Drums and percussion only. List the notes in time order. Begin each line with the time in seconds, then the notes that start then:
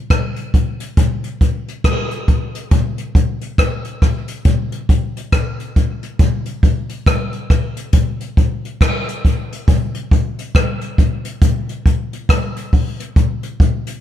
0.10 kick, cross-stick, closed hi-hat
0.36 closed hi-hat
0.54 kick, closed hi-hat
0.80 closed hi-hat
0.97 kick, closed hi-hat
1.24 closed hi-hat
1.41 kick, closed hi-hat
1.68 closed hi-hat
1.84 kick, cross-stick, closed hi-hat
2.11 closed hi-hat
2.28 kick, closed hi-hat
2.55 closed hi-hat
2.71 kick, closed hi-hat
2.98 closed hi-hat
3.15 kick, closed hi-hat
3.41 closed hi-hat
3.58 kick, cross-stick, closed hi-hat
3.85 closed hi-hat
4.02 kick, cross-stick, closed hi-hat
4.28 closed hi-hat
4.45 kick, closed hi-hat
4.72 closed hi-hat
4.89 kick, closed hi-hat
5.17 closed hi-hat
5.32 kick, cross-stick, closed hi-hat
5.60 closed hi-hat
5.76 kick, closed hi-hat
6.03 closed hi-hat
6.19 kick, closed hi-hat
6.45 closed hi-hat
6.63 kick, closed hi-hat
6.89 closed hi-hat
7.06 kick, cross-stick, closed hi-hat
7.33 closed hi-hat
7.50 kick, cross-stick, closed hi-hat
7.77 closed hi-hat
7.93 kick, closed hi-hat
8.20 closed hi-hat
8.37 kick, closed hi-hat
8.65 closed hi-hat
8.81 kick, cross-stick, closed hi-hat
9.08 closed hi-hat
9.25 kick, closed hi-hat
9.52 closed hi-hat
9.68 kick, closed hi-hat
9.94 closed hi-hat
10.11 kick, closed hi-hat
10.39 closed hi-hat
10.55 kick, cross-stick, closed hi-hat
10.81 closed hi-hat
10.98 kick, closed hi-hat
11.25 closed hi-hat
11.42 kick, closed hi-hat
11.69 closed hi-hat
11.86 kick, closed hi-hat
12.13 closed hi-hat
12.29 kick, cross-stick, closed hi-hat
12.56 closed hi-hat
12.73 kick, open hi-hat
13.00 closed hi-hat
13.16 kick, closed hi-hat
13.43 closed hi-hat
13.60 kick, closed hi-hat
13.87 closed hi-hat